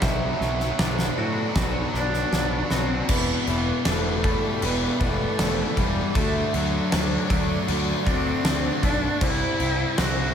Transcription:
0.02 B1 B2 F#3 F#4 B4 D5 E5 B5, kick, snare
0.09 B2 F#3
0.18 B2 F#3
0.25 B2 F#3
0.33 B2 F#3
0.40 B1 B2 F#3, snare
0.47 B2 F#3
0.56 B2 F#3
0.60 B2 F#3, snare
0.71 B2 F#3
0.79 B1 B2 F#3 D4, snare
0.85 B2 F#3
0.94 B2 F#3
0.99 B2 F#3, snare
1.09 B2 F#3
1.16 A2 B2 F#3 F#4 D5
1.25 B2 F#3
1.32 B2 F#3
1.40 B2 F#3
1.47 B2 F#3
1.55 B1 B2 F#3, kick, snare
1.62 B2 F#3
1.71 B2 F#3
1.77 B2 F#3
1.85 B2 F#3
1.92 B1 B2 F#3 D4, snare
2.01 B2 F#3
2.10 B2 F#3
2.14 B2, snare
2.18 F#3
2.23 B2 F#3
2.31 B1 B2 F#3 D5, snare
2.39 B2 F#3
2.47 B2 F#3
2.54 B2 F#3
2.62 B2 F#3
2.70 B1 B2 F#3 C4 F#4, snare
2.77 B2 F#3
2.84 B2 F#3
2.92 B2 F#3
3.01 B2 F#3
3.08 E1 E2 B2 E3 B3 G4 B4 D5 E5 B5, kick, crash
3.47 E1 E2 B2 E3, crash
3.85 E1 E2 B2 E3 A3 D4, snare, crash
4.23 E2 B2 E3 G3 A4, kick, crash
4.62 E1 E2 B2 E3 B3 B4, crash
5.00 E1 E2 B2 E3 A3 D4, kick, crash
5.39 E1 E2 B2 E3 D5, snare, crash
5.76 E1 E2 B2 E3 G3, kick, crash
6.15 D2 D3 A3 D4 A4 E5 F#5 D6, kick, crash
6.53 D2 D3 F#3 A3 D4, crash
6.91 D2 D3 A3 D4, snare, crash
7.29 D2 D3 A3 D4 D5, kick, crash
7.68 D2 D3 A3 D4, crash
8.06 D2 D3 A3 C4 D4, kick, crash
8.44 D2 D3 A3 D4 D5, snare, crash
8.83 B1 D3 A3 D4, kick, crash
9.21 C2 C3 G3 C4 E4 C5 E5, kick, crash
9.59 C2 C3 G3 C4, crash
9.97 C2 C3 G3 C4 F#4, snare, crash

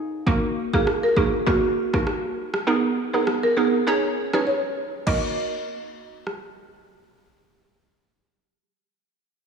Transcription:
Already playing: D#4 G#4
0.26 A#3 D#4 F#4 A#4, kick
0.73 A#3 D#4 F#4 G#4 A#4, kick
0.87 cross-stick
1.03 A#4
1.16 A#3 D#4 F#4 G#4 A#4, kick
1.47 A#3 D#4 F#4 A#4, kick
1.93 A#3 D#4 F#4 A#4, kick, cross-stick
2.07 cross-stick
2.54 cross-stick
2.67 B3 D#4 G#4 A#4
3.13 B3 D#4 G#4 A#4
3.27 cross-stick
3.43 A#4
3.57 B3 D#4 G#4 A#4
3.87 C#4 D#4 G#4 C#5
4.33 C#4 D#4 G#4 B4 C#5, cross-stick
4.47 C#5
5.07 A#3 D#4 F#4 A#4 D#5, kick, crash
6.27 cross-stick

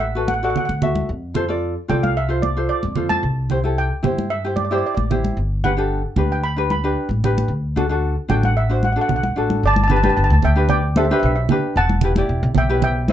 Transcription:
Already playing: A1
0.00 E5
0.15 F#4 A4 B4
0.28 F#5, high conga
0.34 F#5
0.43 F#4 A4 D5 F#5
0.50 F#5
0.56 F#5, low conga
0.65 D2 F#5, high conga
0.82 F#4 A4 E5, low conga
0.95 high conga
1.09 F2
1.34 F4 A4 C5, low conga
1.49 F4 A4 D5
1.88 C2 F4 A4 D5 G5, high conga, low conga
2.03 F5, high conga
2.17 E5
2.29 F4 A4 C5
2.42 D5, high conga
2.57 F4 A4 C5
2.69 D5
2.83 F2, high conga
2.95 F4 A4 C5, low conga
3.09 A5, high conga
3.23 C2
3.50 E4 G4 C5, low conga
3.64 E4 G4 A4
3.78 G5
4.03 G2 E4 G4 C5, high conga, low conga
4.18 high conga
4.30 E5
4.44 E4 G4 C5
4.56 D5, high conga
4.65 D5
4.71 E4 G4 C5 D5
4.78 D5
4.86 D5
4.95 A1 D5, high conga
5.10 E4 G4 C5, low conga
5.24 high conga
5.37 G1
5.64 D4 G4 B4 F#5, low conga
5.77 D4 G4 A4
6.16 D2 D4 G4 B4, high conga, low conga
6.32 G5
6.44 B5
6.56 D4 G4 B4
6.70 B5, high conga
6.84 D4 G4 B4
7.09 A1, high conga
7.24 D4 G4 B4, low conga
7.38 high conga
7.48 D2
7.76 D4 F#4 A4, low conga
7.89 D4 F#4 A4
8.28 A1 D4 F#4 A4 G5, high conga, low conga
8.43 F#5, high conga
8.57 E5
8.69 D4 F#4 C5
8.83 F#5, high conga
8.92 D4 F#4 F#5
8.97 A4
9.01 F#5
9.09 B1 F#5, low conga
9.16 F#5
9.23 F#5, high conga
9.36 A1 D4 F#4 A4
9.50 high conga
9.63 G1 D5
9.67 A5
9.74 A5, high conga
9.84 A5
9.88 D4 G4 B4 A5, low conga
9.96 A5
10.03 D4 G4 B4 A5, high conga
10.09 A5
10.17 G1 A5
10.24 A5
10.30 D2 A5
10.42 D2 E5 G5, low conga
10.56 D4 G4 B4
10.69 D5 G5, low conga
10.96 D4 G4 A4 C5 E5, high conga
11.05 E5
11.11 D4 G4 B4 E5
11.20 B1 E5
11.26 E5
11.36 E5
11.49 D4 G4 B4, low conga
11.76 E1 F#5 A5
11.89 high conga
12.01 E4 G4 B4, low conga
12.16 E4 G4 D5, high conga
12.29 E1
12.43 B1
12.55 B1 E5 G5, low conga
12.69 E4 G4 B4
12.82 E5 G5, low conga
13.08 E4, high conga

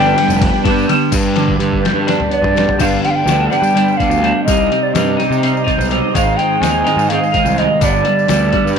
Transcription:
Already playing: G1 G2 D3 G3 B3 D4 G4 B4 G5
0.16 G3 B3 D4, snare, ride
0.28 F1, tambourine
0.41 kick, ride
0.64 G2 G3 B3 D4, kick, ride
0.79 tambourine
0.88 D3 G3 B3 D4, ride, tambourine
1.10 G2 B3 D4 G4 B4, kick, closed hi-hat, crash, tambourine
1.25 tambourine
1.36 D3, snare, closed hi-hat
1.48 kick
1.58 G2 D3, closed hi-hat
1.72 kick
1.83 G3, snare, closed hi-hat
1.94 G2
2.07 D4 B4, snare, closed hi-hat
2.20 mid tom
2.30 B3 D5, closed hi-hat
2.42 G2, floor tom
2.55 G3, snare, closed hi-hat, tambourine
2.69 floor tom
2.78 G2 D3 G3 B3 D4 G4 B4 F5, kick, closed hi-hat, crash, tambourine
3.01 G3 B3 D4 G5, closed hi-hat
3.05 snare
3.10 F5
3.15 G5
3.25 D2 D3 G3 B3 D4, closed hi-hat, tambourine
3.29 snare
3.49 D3 G3 B3 D4 G5, closed hi-hat, tambourine
3.53 G2
3.62 G3, tambourine
3.73 D3 G3 B3 D4, closed hi-hat, tambourine
3.88 tambourine
3.97 G2 D3 G3 B3 D4 F5, kick, closed hi-hat, tambourine
4.10 D2, tambourine
4.21 D3 G3 B3 D4, closed hi-hat
4.44 C2 C3 G3 C4 D#4 C5 D#5, kick, tambourine
4.49 C4 D#4, closed hi-hat
4.70 G3 C4 D#4, closed hi-hat
4.83 D5
4.93 G2 C3 G3 C4 D#5, snare, closed hi-hat, tambourine
4.97 D#4
5.17 C3 G3 C4 D#4, closed hi-hat, tambourine
5.30 C3, tambourine
5.41 C3 G3 C4 D#4, closed hi-hat, tambourine
5.57 tambourine
5.64 G3 C4 D#4, kick, closed hi-hat
5.68 C3, tambourine
5.78 B1, tambourine
5.89 C3 G3 C4 D#4, closed hi-hat
6.12 G#1 G#2 D#3 G#3 C4 D#4 G#4 F5, kick, closed hi-hat, tambourine
6.36 G#3 C4 D#4 G5, closed hi-hat
6.59 D#2 D#3 G#3 C4 D#4 G#5, closed hi-hat
6.64 snare, tambourine
6.84 G#2 D#3 G#3 C4 D#4, closed hi-hat, tambourine
6.96 G#2, tambourine
7.09 D#3 G#3 C4 D#4 F5, closed hi-hat, tambourine
7.23 tambourine
7.32 G#2 D#3 G#3 C4 D#4, kick, closed hi-hat, tambourine
7.45 C2, tambourine
7.56 D#3 G#3 C4 D#4 D#5, closed hi-hat
7.79 G1 G2 D3 G3 B3 D4 G4 B4, kick, closed hi-hat, tambourine
7.84 D5
8.04 G3 B3 D4, closed hi-hat
8.19 tambourine
8.27 D2 D3 G3 B3 D4, snare, closed hi-hat, tambourine
8.52 G2 D3 G3 B3 D4, kick, closed hi-hat
8.65 G2, tambourine
8.75 D3 G3

